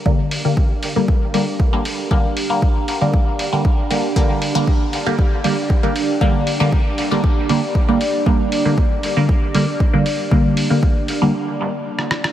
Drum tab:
HH |--o---o---o---o-|--o---o---o---o-|--o---o---o---o-|--o---o---o---o-|
SD |----------------|----------------|----------------|----------------|
BD |o---o---o---o---|o---o---o---o---|o---o---o---o---|o---o---o---o---|

HH |--o---o---o---o-|--o---o---------|
SD |----------------|-------------rrr|
BD |o---o---o---o---|o---o-----------|